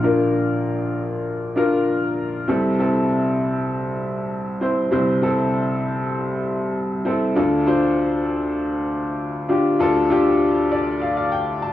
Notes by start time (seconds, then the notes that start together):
Already playing: A#1 A#2 D4 F4 A#4
0.03 D4 F4 A#4
1.56 D4 F4 A#4
2.48 C2 C3 C4 E4 A4
2.79 C4 E4 A4
4.61 C4 E4 C5
4.91 C2 C3 C4 E4 C5
5.22 C4 E4 A4
7.05 C4 E4 A4
7.35 D2 D3 D4 F4 A4
7.66 D4 F4 C5
9.49 D4 F4 G4
9.79 D2 D3 D4 F4 A4
10.10 D4 F4 G4
10.72 D5
11.02 F5
11.17 F5
11.32 G5
11.63 A5